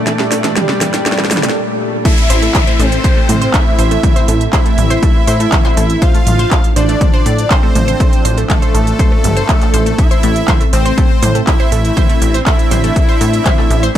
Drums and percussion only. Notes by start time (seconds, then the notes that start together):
0.07 snare, closed hi-hat
0.19 snare
0.32 snare, open hi-hat
0.44 snare, closed hi-hat
0.56 snare, closed hi-hat, mid tom
0.69 snare
0.81 snare, open hi-hat
0.94 snare, closed hi-hat
1.06 snare, closed hi-hat
1.12 snare
1.18 snare
1.25 snare
1.31 snare, mid tom, open hi-hat
1.37 snare
1.43 snare, closed hi-hat
1.49 snare
2.05 kick, closed hi-hat
2.18 closed hi-hat
2.30 open hi-hat
2.42 closed hi-hat
2.55 kick, clap, closed hi-hat, mid tom
2.67 closed hi-hat
2.80 open hi-hat
2.92 closed hi-hat
3.04 kick, closed hi-hat
3.29 mid tom, open hi-hat
3.42 closed hi-hat
3.54 kick, clap, closed hi-hat
3.79 open hi-hat
3.91 closed hi-hat
4.03 kick, closed hi-hat, mid tom
4.16 closed hi-hat
4.28 open hi-hat
4.41 closed hi-hat
4.53 kick, clap, closed hi-hat
4.66 closed hi-hat
4.78 mid tom, open hi-hat
4.90 closed hi-hat
5.03 kick, closed hi-hat
5.28 open hi-hat
5.40 closed hi-hat
5.52 kick, clap, closed hi-hat, mid tom
5.65 clap
5.77 open hi-hat
5.90 closed hi-hat
6.02 kick, closed hi-hat
6.15 closed hi-hat
6.27 mid tom, open hi-hat
6.39 closed hi-hat
6.51 kick, clap, closed hi-hat
6.64 closed hi-hat
6.76 open hi-hat
6.89 closed hi-hat
7.01 kick, closed hi-hat, mid tom
7.26 open hi-hat
7.38 closed hi-hat
7.51 kick, clap, closed hi-hat
7.75 mid tom, open hi-hat
7.88 closed hi-hat
8.00 kick, closed hi-hat
8.13 closed hi-hat
8.25 open hi-hat
8.38 closed hi-hat
8.50 kick, clap, closed hi-hat, mid tom
8.62 closed hi-hat
8.75 open hi-hat
8.87 closed hi-hat
8.99 kick, closed hi-hat
9.24 mid tom, open hi-hat
9.37 closed hi-hat
9.49 kick, clap, closed hi-hat
9.61 clap, closed hi-hat
9.74 open hi-hat
9.86 closed hi-hat
9.98 kick, closed hi-hat
10.11 closed hi-hat
10.23 open hi-hat
10.36 closed hi-hat
10.48 kick, clap, closed hi-hat, mid tom
10.61 closed hi-hat
10.73 open hi-hat
10.86 closed hi-hat
10.98 kick, closed hi-hat
11.23 mid tom, open hi-hat
11.35 closed hi-hat
11.47 kick, clap, closed hi-hat
11.72 open hi-hat
11.85 closed hi-hat
11.97 kick, closed hi-hat, mid tom
12.10 closed hi-hat
12.22 open hi-hat
12.34 closed hi-hat
12.46 kick, clap, closed hi-hat
12.59 closed hi-hat
12.71 mid tom, open hi-hat
12.84 closed hi-hat
12.96 kick, closed hi-hat
13.21 open hi-hat
13.33 closed hi-hat
13.46 kick, clap, closed hi-hat, mid tom
13.58 clap
13.71 open hi-hat
13.83 closed hi-hat